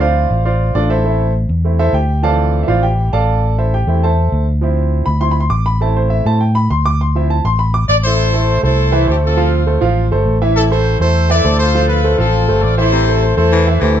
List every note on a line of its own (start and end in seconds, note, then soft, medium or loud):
0.00 0.25 D2 loud
0.00 0.29 F3 medium
0.00 0.30 C4 medium
0.00 0.30 E4 medium
0.00 0.43 F4 medium
0.00 0.43 C5 medium
0.00 0.42 D5 medium
0.00 0.42 F5 loud
0.31 0.72 A1 medium
0.45 0.74 F4 medium
0.45 0.73 C5 medium
0.45 0.73 D5 medium
0.45 0.73 F5 medium
0.75 1.44 A1 loud
0.75 0.90 D4 medium
0.75 0.90 F4 medium
0.75 0.89 A4 medium
0.75 0.90 D5 medium
0.90 1.04 E4 medium
0.90 1.32 A4 medium
0.90 1.32 C5 medium
0.90 1.32 E5 loud
1.04 1.25 A3 medium
1.04 1.25 C4 medium
1.04 1.25 E4 medium
1.49 1.91 E2 medium
1.65 1.78 A3 soft
1.65 1.78 C4 soft
1.65 1.78 E4 medium
1.79 1.94 E4 medium
1.79 1.94 A4 medium
1.79 1.94 C5 medium
1.79 1.94 E5 loud
1.93 2.63 D2 medium
1.93 2.22 G4 medium
1.93 2.22 G5 medium
2.22 3.39 E3 medium
2.22 2.66 F3 medium
2.22 2.66 C4 medium
2.22 2.65 A4 medium
2.22 2.66 D5 medium
2.22 2.66 F5 medium
2.22 2.65 A5 loud
2.63 2.66 E5 medium
2.67 3.10 A1 medium
2.67 2.81 F3 soft
2.67 2.82 C4 soft
2.67 2.82 E4 medium
2.67 2.83 F4 medium
2.67 2.83 C5 medium
2.67 2.83 D5 medium
2.67 2.83 F5 medium
2.83 3.11 G4 medium
2.83 3.11 G5 medium
3.13 3.82 A1 loud
3.13 3.55 A4 medium
3.13 3.55 D5 medium
3.13 3.41 F5 medium
3.13 3.55 A5 loud
3.58 3.73 E4 medium
3.58 3.73 A4 medium
3.58 3.73 C5 medium
3.58 3.73 E5 medium
3.74 4.01 G4 medium
3.74 4.01 G5 medium
3.87 4.29 E2 medium
3.87 4.07 A3 medium
3.87 4.08 C4 soft
3.87 4.08 E4 medium
4.03 4.45 A4 medium
4.03 4.45 C5 medium
4.03 4.45 E5 medium
4.03 4.45 A5 medium
4.32 5.01 D2 loud
4.61 5.04 F3 medium
4.61 5.05 C4 medium
4.61 5.05 E4 medium
5.06 5.48 D2 medium
5.06 5.21 B5 loud
5.21 5.34 F3 soft
5.21 5.35 C4 soft
5.21 5.35 E4 medium
5.21 5.31 C6 loud
5.31 5.41 B5 medium
5.40 5.51 C6 medium
5.50 6.20 A1 loud
5.50 5.65 D6 loud
5.66 5.80 B5 loud
5.81 6.24 A3 medium
5.81 6.25 C4 medium
5.81 6.25 E4 medium
5.81 5.96 A5 medium
5.97 6.11 C5 medium
6.10 6.25 E5 medium
6.26 6.67 A2 loud
6.26 6.39 A3 medium
6.26 6.39 C4 soft
6.26 6.40 E4 medium
6.26 6.41 A5 loud
6.41 6.55 G5 medium
6.55 6.70 B5 loud
6.70 7.39 D2 loud
6.70 6.85 C6 loud
6.86 7.00 D6 loud
7.01 7.15 C6 medium
7.15 7.35 F3 medium
7.15 7.35 C4 medium
7.15 7.36 E4 medium
7.15 7.30 E5 medium
7.30 7.44 A5 medium
7.44 7.86 A1 medium
7.44 7.59 C6 loud
7.59 7.74 B5 medium
7.74 7.83 D6 loud
7.89 8.58 A1 medium
7.89 7.96 D5 loud
8.04 8.60 E4 medium
8.04 8.60 A4 medium
8.04 8.59 C5 loud
8.34 8.58 A3 medium
8.34 8.58 A4 medium
8.34 8.58 C5 medium
8.63 9.05 C2 medium
8.63 8.88 A3 medium
8.63 9.19 E4 medium
8.63 8.88 A4 medium
8.63 9.19 A4 medium
8.63 8.88 C5 medium
8.63 9.05 C5 loud
8.92 9.05 E3 loud
8.92 9.05 E4 loud
8.92 9.05 E5 loud
9.07 9.77 D2 loud
9.07 9.32 A3 medium
9.07 9.17 G4 medium
9.07 9.32 A4 medium
9.07 9.32 C5 medium
9.25 9.80 C4 medium
9.25 9.79 F4 medium
9.25 9.52 A4 medium
9.37 9.62 F3 medium
9.37 9.62 F4 medium
9.37 9.62 F5 medium
9.66 9.79 A3 medium
9.66 9.79 A4 medium
9.66 9.79 C5 medium
9.81 10.09 A1 medium
9.81 10.06 F3 medium
9.81 10.06 F4 medium
9.81 10.06 F5 medium
10.11 10.25 G1 medium
10.11 10.36 A3 medium
10.11 10.36 A4 medium
10.11 10.36 C5 medium
10.26 10.95 A1 loud
10.42 10.66 E3 medium
10.42 10.66 E4 loud
10.42 10.66 E5 loud
10.56 11.12 C4 medium
10.56 10.71 E4 medium
10.56 10.63 A4 loud
10.71 10.96 A3 medium
10.71 11.00 E4 medium
10.71 10.96 A4 medium
10.71 11.00 A4 medium
10.71 10.99 C5 loud
10.71 10.96 C5 medium
11.00 11.42 E2 medium
11.00 11.25 A3 medium
11.00 11.56 E4 medium
11.00 11.25 A4 medium
11.00 11.30 A4 medium
11.00 11.28 C5 loud
11.00 11.25 C5 medium
11.30 11.42 E3 loud
11.30 11.43 E4 medium
11.30 11.60 A4 medium
11.30 11.58 D5 loud
11.30 11.43 E5 medium
11.45 12.13 D2 loud
11.45 11.69 A3 medium
11.45 11.69 A4 medium
11.45 11.69 C5 medium
11.59 11.89 F4 medium
11.59 12.16 A4 medium
11.59 11.87 C5 loud
11.75 11.99 F3 medium
11.75 11.99 F4 medium
11.75 12.00 F5 medium
11.89 12.19 F4 medium
11.89 12.17 B4 loud
12.04 12.17 A3 medium
12.04 12.17 A4 medium
12.04 12.17 C5 medium
12.18 12.46 A1 loud
12.18 12.43 F3 medium
12.18 12.75 C4 medium
12.18 12.43 F4 medium
12.18 12.75 F4 medium
12.18 12.60 A4 loud
12.18 12.43 F5 medium
12.48 12.62 G1 medium
12.48 12.73 A3 medium
12.48 12.73 A4 medium
12.48 12.73 C5 medium
12.63 13.32 A1 loud
12.63 12.78 D5 loud
12.78 13.02 E3 medium
12.78 13.03 E4 medium
12.78 13.34 E4 medium
12.78 13.34 A4 medium
12.78 13.34 C5 loud
12.78 13.03 E5 loud
12.92 13.26 C3 medium
13.08 13.33 A3 medium
13.08 13.33 A4 medium
13.08 13.33 C5 medium
13.37 13.79 E2 medium
13.37 13.62 A3 medium
13.37 13.93 E4 medium
13.37 13.62 A4 medium
13.37 13.93 A4 medium
13.37 13.79 C5 loud
13.37 13.62 C5 medium
13.52 13.68 E3 medium
13.67 13.79 E3 medium
13.67 13.79 E4 medium
13.67 13.80 E5 medium
13.81 14.00 D2 loud
13.81 14.00 E3 medium
13.81 14.00 A3 medium
13.81 13.97 G4 medium
13.81 14.00 A4 medium
13.81 14.00 C5 medium